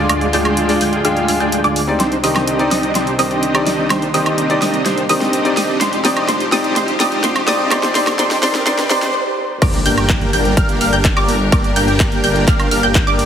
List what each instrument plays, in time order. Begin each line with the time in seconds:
Already playing: string section D3 G#3 F4, grand piano G#3 D4 F4
0.00 grand piano D5
0.09 detuned saw bass D2, supersaw synth G#3 D4 F4 G#4 D5, synth pluck D6, closed hi-hat, high woodblock
0.21 closed hi-hat
0.33 detuned saw bass D2, grand piano G#3 D4 F4 D5, supersaw synth G#3 D4 F4 G#4 G5, synth pluck G6, open hi-hat
0.45 closed hi-hat, high woodblock
0.57 closed hi-hat
0.68 grand piano G#3 D4 F4 D5, open hi-hat
0.81 detuned saw bass D2, supersaw synth G#3 D4 F4 G#4 G5, synth pluck G6, open hi-hat
0.93 closed hi-hat
1.04 detuned saw bass D2, grand piano G#3 D4 F4 G5, supersaw synth G#3 D4 F4 G#4 F5, synth pluck F6, closed hi-hat
1.17 closed hi-hat
1.28 detuned saw bass D2, supersaw synth G#3 D4 F4 G#4 F5, synth pluck F6, open hi-hat
1.40 detuned saw bass D2, grand piano G#3 D4 F4 D5, supersaw synth G#3 D4 F4 G#4 G5, synth pluck G6, closed hi-hat
1.52 closed hi-hat
1.64 detuned saw bass D2, supersaw synth G#3 D4 F4 G#4 D5, synth pluck D6, closed hi-hat
1.76 open hi-hat
1.87 grand piano C4 D#4 G4 D5
2.00 detuned saw bass C2, string section D#3 C4, supersaw synth C4 D4 D#4 G4 C5, synth pluck C6, snare, closed hi-hat, riser
2.12 closed hi-hat
2.23 detuned saw bass C2, grand piano D#3 C4 G4, supersaw synth C4 D4 D#4 G4 D#5, synth pluck D#6, open hi-hat
2.36 snare, closed hi-hat, high woodblock
2.47 closed hi-hat
2.59 grand piano C4 D#4 G4 D5, closed hi-hat
2.71 detuned saw bass C2, supersaw synth C4 D4 D#4 G4 D#5, synth pluck D#6, snare, open hi-hat
2.83 closed hi-hat
2.95 detuned saw bass C2, supersaw synth C4 D4 D#4 G4 C5, synth pluck C6, snare, closed hi-hat
3.07 closed hi-hat
3.18 detuned saw bass C2, grand piano D#3 C4 G4, supersaw synth C4 D4 D#4 G4 D#5, synth pluck D#6, open hi-hat
3.31 closed hi-hat
3.43 closed hi-hat
3.54 grand piano C4 D#4 G4 D5, closed hi-hat, high woodblock
3.67 detuned saw bass C2, supersaw synth C4 D4 D#4 G4 D#5, synth pluck D#6, snare, open hi-hat
3.90 detuned saw bass C2, string section A#3, supersaw synth C4 D4 D#4 G4 C5, synth pluck C6, snare, closed hi-hat, high woodblock
4.02 closed hi-hat
4.14 detuned saw bass C2, grand piano D#3 C4 G4, supersaw synth C4 D4 D#4 G4 D#5, synth pluck D#6, open hi-hat
4.26 closed hi-hat, high woodblock
4.38 closed hi-hat
4.49 grand piano C4 D#4 G4 D5, closed hi-hat
4.62 detuned saw bass C2, supersaw synth C4 D4 D#4 G4 D#5, synth pluck D#6, snare, open hi-hat
4.74 closed hi-hat
4.86 detuned saw bass C2, supersaw synth C4 D4 D#4 G4 C5, synth pluck C6, snare, closed hi-hat
4.98 closed hi-hat
5.09 detuned saw bass C2, grand piano D#3 C4 G4, supersaw synth C4 D4 D#4 G4 D#5, synth pluck D#6, open hi-hat
5.21 snare, closed hi-hat
5.33 closed hi-hat
5.45 grand piano C4 D#4 G4 D5, closed hi-hat
5.57 detuned saw bass C2, supersaw synth C4 D4 D#4 G4 D#5, synth pluck D#6, snare, open hi-hat
5.81 detuned saw bass F1, string section G#3 F4 G4, supersaw synth C4 D4 D#4 G4 C5, synth pluck C6, snare, closed hi-hat
5.93 closed hi-hat
6.04 detuned saw bass F1, grand piano C4 D#4 G4 D5, supersaw synth C4 D4 D#4 G4 D#5, synth pluck D#6, snare, open hi-hat
6.17 closed hi-hat, high woodblock
6.28 detuned saw bass F1, supersaw synth C4 D4 D#4 G4 C5, synth pluck C6, snare, closed hi-hat
6.40 closed hi-hat
6.52 detuned saw bass F1, grand piano C4 D#4 G4 D5, supersaw synth C4 D4 D#4 G4 D#5, synth pluck D#6, snare, open hi-hat
6.64 closed hi-hat
6.76 detuned saw bass F1, supersaw synth C4 D4 D#4 G4 C5, synth pluck C6, snare, closed hi-hat
6.88 closed hi-hat
6.99 detuned saw bass F1, grand piano C4 D#4 G4 D5, supersaw synth C4 D4 D#4 G4 D#5, synth pluck D#6, snare, open hi-hat
7.12 closed hi-hat
7.24 detuned saw bass F1, supersaw synth C4 D4 D#4 G4 C5, synth pluck C6, snare, closed hi-hat
7.36 closed hi-hat, high woodblock
7.47 detuned saw bass F1, grand piano C4 D#4 G4 D5, supersaw synth C4 D4 D#4 G4 D#5, synth pluck D#6, snare, open hi-hat
7.71 detuned saw bass F1, grand piano C4 D#4 G4 D5, supersaw synth C4 D4 D#4 G4 C5, synth pluck C6, snare, closed hi-hat, high woodblock
7.83 snare, closed hi-hat
7.95 detuned saw bass F1, grand piano C4 D#4 G4 D5, supersaw synth C4 D4 D#4 G4 C5, synth pluck C6, snare, open hi-hat
8.07 snare, closed hi-hat, high woodblock
8.18 detuned saw bass F1, grand piano C4 D#4 G4 D5, supersaw synth C4 D4 D#4 G4 C5, synth pluck C6, snare, closed hi-hat
8.31 snare, open hi-hat
8.42 detuned saw bass F1, grand piano C4 D#4 G4 D5, supersaw synth C4 D4 D#4 G4 C5, synth pluck C6, snare, open hi-hat
8.55 snare, closed hi-hat
8.66 detuned saw bass F1, grand piano C4 D#4 G4 D5, supersaw synth C4 D4 D#4 G4 C5, synth pluck C6, snare, closed hi-hat
8.79 snare, closed hi-hat
8.90 detuned saw bass F1, grand piano C4 D#4 G4 D5, supersaw synth C4 D4 D#4 G4 C5, synth pluck C6, snare, open hi-hat
9.02 snare, closed hi-hat
9.62 detuned saw bass G1, string section G3 D4 A#4, supersaw synth A#3 D4 G4 A#4 D5, synth pluck D6, kick, closed hi-hat, crash, impact, high woodblock
9.74 closed hi-hat
9.86 detuned saw bass G1, supersaw synth A#3 D4 G4 A#4 G5, synth pluck G6, open hi-hat
9.98 closed hi-hat, high woodblock
10.09 kick, clap, closed hi-hat
10.21 closed hi-hat
10.33 detuned saw bass G1, supersaw synth A#3 D4 G4 A#4 G5, synth pluck G6, open hi-hat
10.45 closed hi-hat
10.57 detuned saw bass G1, supersaw synth A#3 D4 G4 A#4 F5, synth pluck F6, kick, closed hi-hat
10.69 closed hi-hat
10.81 detuned saw bass G1, supersaw synth A#3 D4 G4 A#4 F5, synth pluck F6, open hi-hat
10.93 detuned saw bass G1, supersaw synth A#3 D4 G4 A#4 G5, synth pluck G6, closed hi-hat
11.05 kick, clap, closed hi-hat
11.17 detuned saw bass G1, supersaw synth A#3 D4 G4 A#4 D5, synth pluck D6, closed hi-hat, high woodblock
11.29 open hi-hat
11.52 detuned saw bass G1, supersaw synth A#3 D4 G4 A#4 D5, synth pluck D6, kick, closed hi-hat, high woodblock
11.64 closed hi-hat
11.76 detuned saw bass G1, supersaw synth A#3 D4 G4 A#4 G5, synth pluck G6, open hi-hat
11.88 closed hi-hat
12.00 kick, clap, closed hi-hat
12.12 closed hi-hat
12.24 detuned saw bass G1, supersaw synth A#3 D4 G4 A#4 G5, synth pluck G6, open hi-hat
12.36 closed hi-hat
12.48 detuned saw bass G1, supersaw synth A#3 D4 G4 A#4 F5, synth pluck F6, kick, clap, closed hi-hat
12.60 closed hi-hat, high woodblock
12.71 detuned saw bass G1, supersaw synth A#3 D4 G4 A#4 F5, synth pluck F6, open hi-hat
12.83 detuned saw bass G1, supersaw synth A#3 D4 G4 A#4 G5, synth pluck G6, closed hi-hat
12.95 kick, clap, closed hi-hat
13.07 detuned saw bass G1, supersaw synth A#3 D4 G4 A#4 D5, synth pluck D6, closed hi-hat
13.19 open hi-hat